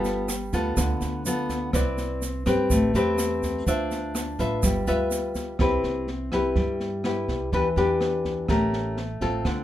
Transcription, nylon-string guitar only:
0.00 0.75 G3 medium
0.00 0.29 B3 medium
0.00 0.29 F4 medium
0.00 0.29 A4 medium
0.53 1.22 B3 medium
0.53 1.22 F4 medium
0.53 1.22 A4 medium
0.78 1.72 D3 medium
1.26 1.70 B3 medium
1.26 1.70 F4 medium
1.26 1.71 A4 medium
1.74 2.45 C4 medium
1.74 2.22 E4 medium
1.74 2.22 B4 medium
1.74 2.22 D5 medium
2.46 2.90 C4 medium
2.46 2.91 G4 medium
2.46 2.91 B4 medium
2.71 3.65 A3 medium
2.95 3.63 C4 medium
2.95 3.63 G4 medium
2.95 3.64 B4 medium
3.67 4.61 D4 medium
3.67 4.36 F4 medium
3.67 4.36 C5 medium
3.67 4.36 E5 medium
4.39 4.84 F4 medium
4.39 4.84 B4 medium
4.39 4.84 E5 medium
4.63 5.57 G3 soft
4.87 5.56 F4 medium
4.87 5.56 B4 medium
4.87 5.56 E5 medium
5.60 6.54 C4 medium
5.60 6.08 E4 medium
5.60 6.08 G4 medium
5.60 6.08 B4 medium
6.33 7.01 E4 medium
6.33 7.01 G4 medium
6.33 7.01 B4 medium
6.56 7.50 G3 soft
7.05 7.51 E4 soft
7.05 7.51 G4 soft
7.05 7.51 B4 soft
7.53 8.47 E3 medium
7.53 7.67 D4 medium
7.53 7.67 G4 medium
7.53 7.67 B4 medium
7.77 8.45 D4 medium
7.77 8.46 G4 medium
7.77 8.46 B4 medium
8.49 9.43 A3 medium
8.49 8.97 C#4 soft
8.49 8.97 G4 soft
8.49 8.98 A#4 medium
9.21 9.64 C4 medium
9.21 9.64 F4 medium
9.21 9.64 A4 medium
9.46 9.64 D3 medium

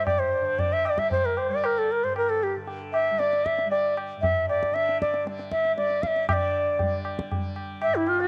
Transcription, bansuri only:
0.06 0.21 D5 medium
0.19 0.61 C5 medium
0.59 0.74 D5 medium
0.73 0.88 E5 loud
0.86 1.00 D5 medium
0.99 1.11 E5 medium
1.11 1.27 C5 medium
1.25 1.39 A#4 medium
1.38 1.53 C5 medium
1.52 1.66 D5 medium
1.65 1.80 A#4 medium
1.78 1.93 A4 medium
1.92 2.05 A#4 medium
2.04 2.16 C5 medium
2.17 2.31 A#4 medium
2.29 2.45 A4 medium
2.43 2.55 G4 medium
2.93 3.20 E5 loud
3.19 3.47 D5 medium
3.45 3.70 E5 medium
3.71 3.95 D5 medium
4.22 4.46 E5 loud
4.49 4.76 D5 medium
4.74 5.00 E5 medium
5.02 5.25 D5 medium
5.51 5.75 E5 medium
5.77 6.04 D5 medium
6.03 6.08 F5 medium
6.07 6.28 E5 loud
6.29 6.34 E5 medium
6.33 7.01 D5 medium
7.83 7.97 E5 loud
7.96 8.10 E4 medium
8.09 8.22 F4 loud
8.21 8.28 G4 loud

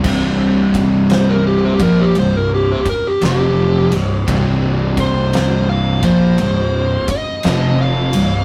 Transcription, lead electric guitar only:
1.12 1.34 C5 loud
1.29 1.43 A#4 medium
1.47 1.80 G4 medium
1.65 1.73 C5 medium
1.82 2.04 A#4 medium
2.01 2.14 G4 medium
2.19 2.37 C5 loud
2.37 2.50 A#4 medium
2.54 2.86 G4 medium
2.72 2.79 C5 loud
2.89 3.11 A#4 medium
3.07 3.20 G4 medium
3.26 3.91 G4 loud
5.00 5.67 C5 medium
5.69 6.03 F5 medium
6.05 7.07 C5 loud
7.11 7.78 D#5 medium
7.81 8.45 F5 medium

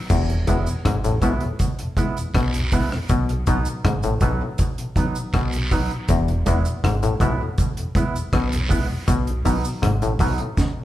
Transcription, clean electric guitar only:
0.47 0.67 G#3 medium
0.47 0.67 B3 loud
0.47 0.68 E4 medium
1.22 1.42 G#3 medium
1.22 1.42 B3 medium
1.22 1.43 E4 loud
1.97 2.16 G#3 medium
1.97 2.17 B3 medium
1.97 2.17 E4 loud
2.72 2.92 G#3 medium
2.72 2.92 B3 medium
2.72 2.91 E4 loud
2.92 muted clean electric guitar stroke soft
3.47 3.66 F#3 medium
3.47 3.67 B3 medium
3.47 3.67 D#4 medium
4.21 4.41 F#3 medium
4.21 4.41 B3 medium
4.21 4.42 D#4 medium
4.96 5.16 F#3 medium
4.96 5.16 B3 medium
4.96 5.17 D#4 medium
5.71 5.91 F#3 loud
5.71 5.91 B3 loud
5.71 5.92 D#4 loud
6.46 6.65 G#3 medium
6.46 6.66 B3 medium
6.46 6.66 E4 medium
7.20 7.40 G#3 medium
7.20 7.40 B3 medium
7.20 7.41 E4 loud
7.95 8.15 G#3 medium
7.95 8.15 B3 medium
7.95 8.16 E4 medium
8.69 8.89 G#3 medium
8.69 8.89 B3 loud
8.69 8.88 E4 loud
8.89 muted clean electric guitar stroke soft
9.45 9.64 F#3 medium
9.45 9.65 B3 medium
9.45 9.65 D#4 medium
10.20 10.39 F#3 medium
10.20 10.40 B3 medium
10.20 10.40 D#4 loud

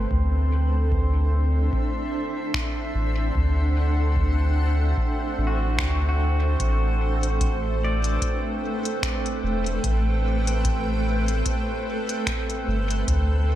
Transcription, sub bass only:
0.11 1.70 D2 medium
2.95 3.31 A1 medium
3.35 4.94 D2 medium
5.38 5.80 A1 medium
5.79 6.56 D2 medium
6.60 8.18 A1 medium
9.43 9.80 E1 medium
9.84 11.43 A1 medium
12.68 13.04 G1 loud
13.08 13.55 D2 medium

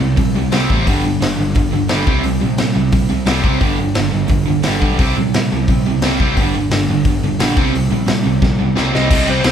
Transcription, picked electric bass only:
0.00 0.15 C2 medium
0.17 0.32 A#1 medium
0.36 0.50 C2 medium
0.53 0.68 C2 medium
0.70 0.85 A1 medium
0.87 1.02 G1 medium
1.05 1.19 G1 medium
1.21 1.36 G1 medium
1.38 1.53 G1 medium
1.56 1.71 G1 medium
1.73 1.88 G1 medium
1.90 2.05 G1 medium
2.07 2.22 C2 medium
2.25 2.40 C2 medium
2.43 2.57 A#1 medium
2.60 2.75 A#2 medium
2.76 2.91 C2 medium
2.93 3.08 A#1 medium
3.10 3.25 C2 medium
3.27 3.42 C2 medium
3.44 3.59 C2 medium
3.61 3.77 G1 medium
3.79 3.94 G1 medium
3.96 4.11 G1 medium
4.14 4.28 G1 medium
4.29 4.45 G1 medium
4.49 4.63 G1 medium
4.67 4.81 G1 medium
4.82 4.99 B1 medium
4.99 5.14 C2 medium
5.17 5.32 A#1 medium
5.34 5.49 A#2 medium
5.52 5.67 C2 medium
5.68 5.83 A#1 medium
5.86 6.00 C2 medium
6.02 6.17 C2 medium
6.20 6.35 C2 medium
6.37 6.52 G1 medium
6.56 6.70 G1 medium
6.72 6.87 G1 medium
6.89 7.04 G1 medium
7.05 7.20 G1 medium
7.22 7.37 G1 medium
7.40 7.55 A#1 medium
7.58 7.72 C2 medium
7.74 7.89 C2 medium
7.91 8.06 A#1 medium
8.08 8.23 A#2 medium
8.26 8.41 C2 medium
8.42 8.57 A#1 medium
8.61 8.75 C2 medium
8.77 8.92 C2 medium
8.96 9.10 C2 medium
9.11 9.27 C2 medium
9.28 9.43 C2 medium
9.44 9.52 C2 medium

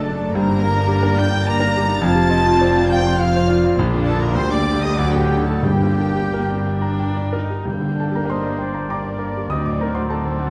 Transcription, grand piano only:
0.00 0.32 F#2 medium
0.00 0.37 F#3 medium
0.00 0.21 A3 medium
0.00 0.09 D4 medium
0.00 0.38 A4 medium
0.00 0.37 D5 medium
0.00 0.37 A5 medium
0.09 0.30 D4 medium
0.21 0.35 A3 medium
0.35 1.98 G2 loud
0.49 0.70 D3 medium
0.62 0.84 A#3 medium
0.75 0.98 D4 medium
0.87 1.11 G4 medium
1.03 1.26 A#4 medium
1.18 1.40 D5 medium
1.33 1.55 G5 medium
1.48 1.69 D5 medium
1.60 1.83 A#4 medium
1.76 1.98 G4 medium
1.88 2.02 D4 medium
2.02 3.73 F2 loud
2.15 2.39 C3 medium
2.29 2.54 C4 medium
2.46 2.70 F4 medium
2.61 2.85 C5 medium
2.77 3.00 F4 medium
2.92 3.15 F5 medium
3.07 3.29 C6 medium
3.22 3.44 F5 medium
3.36 3.58 C5 medium
3.50 3.72 F4 medium
3.64 3.77 C4 medium
3.79 4.34 A#1 loud
3.92 4.15 F2 medium
4.04 4.28 D4 medium
4.23 4.36 F4 medium
4.35 4.95 D2 medium
4.51 4.75 D3 medium
4.70 4.93 D4 medium
4.84 4.99 G4 medium
4.98 5.62 D2 loud
5.15 5.40 A2 medium
5.32 5.58 D4 medium
5.49 5.65 F#4 medium
5.63 7.63 G2 medium
5.82 6.09 D3 medium
5.98 6.26 D4 medium
6.15 6.43 G4 medium
6.34 6.60 A#4 medium
6.49 6.76 D5 medium
6.66 6.93 G5 medium
6.82 7.09 A#5 medium
6.99 7.27 G5 medium
7.17 7.44 D5 medium
7.33 7.60 A#4 medium
7.50 7.66 G4 medium
7.65 9.45 G2 medium
7.80 8.06 D3 medium
7.95 8.22 D4 medium
8.00 8.14 A4 medium
8.00 8.14 A5 medium
8.11 8.37 G4 medium
8.16 8.24 A#4 soft
8.16 8.29 A#5 medium
8.25 8.52 A#4 medium
8.30 8.86 C5 medium
8.30 8.86 C6 medium
8.42 8.67 D5 medium
8.58 8.83 G5 medium
8.74 8.89 A#5 medium
8.89 9.02 D5 medium
8.89 9.13 G5 medium
8.89 9.46 A#5 medium
8.89 9.46 D6 medium
9.04 9.28 D5 medium
9.19 9.43 A#4 medium
9.37 9.51 G4 medium
9.49 10.50 D2 medium
9.49 9.65 D#5 medium
9.49 9.64 D#6 medium
9.65 9.89 A2 medium
9.65 9.80 D5 medium
9.65 9.79 D6 medium
9.79 10.03 C4 medium
9.79 9.94 A#5 medium
9.83 9.95 A#4 medium
9.95 10.18 F#4 medium
9.95 10.09 C5 medium
9.95 10.08 C6 medium
10.10 10.33 A4 medium
10.10 10.37 F#5 medium
10.10 10.50 A5 medium
10.26 10.48 C5 medium
10.39 10.50 F#5 medium

